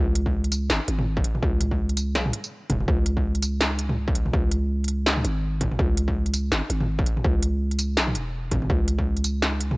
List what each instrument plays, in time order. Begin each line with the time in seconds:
Already playing: 808-style bass C#2
0.15 closed hi-hat
0.26 kick
0.44 closed hi-hat
0.52 closed hi-hat, tambourine
0.70 808-style bass G#1, snare
0.88 808-style bass G#1, closed hi-hat
0.99 mid tom
1.17 kick
1.24 closed hi-hat
1.35 mid tom
1.43 808-style bass C#2, kick
1.61 closed hi-hat, mid tom
1.71 kick
1.89 closed hi-hat
1.97 closed hi-hat, tambourine
2.15 808-style bass B1, snare
2.26 mid tom
2.33 closed hi-hat
2.44 tambourine
2.70 808-style bass E1, kick, closed hi-hat, mid tom
2.80 mid tom
2.88 808-style bass C#2, kick
3.06 closed hi-hat
3.17 kick
3.35 closed hi-hat
3.42 closed hi-hat, tambourine
3.61 snare
3.79 closed hi-hat
3.89 mid tom
4.08 kick
4.15 closed hi-hat
4.26 mid tom
4.33 808-style bass C#2, kick
4.51 closed hi-hat
4.84 closed hi-hat
4.88 closed hi-hat
5.06 snare
5.17 mid tom
5.24 808-style bass G#1, closed hi-hat
5.61 kick, closed hi-hat, mid tom
5.72 mid tom
5.79 808-style bass C#2, kick
5.97 closed hi-hat
6.08 kick
6.26 closed hi-hat
6.34 closed hi-hat, tambourine
6.52 808-style bass G#1, snare
6.70 808-style bass G#1, closed hi-hat
6.81 mid tom
6.99 kick
7.06 closed hi-hat
7.17 mid tom
7.24 808-style bass C#2, kick
7.43 closed hi-hat
7.71 closed hi-hat
7.79 closed hi-hat, tambourine
7.97 808-style bass B1, snare
8.08 mid tom
8.15 808-style bass E1, closed hi-hat
8.51 808-style bass G#1, kick, closed hi-hat, mid tom
8.62 mid tom
8.70 808-style bass C#2, kick
8.88 closed hi-hat
8.99 kick
9.17 closed hi-hat
9.24 closed hi-hat, tambourine
9.42 snare
9.61 closed hi-hat
9.71 mid tom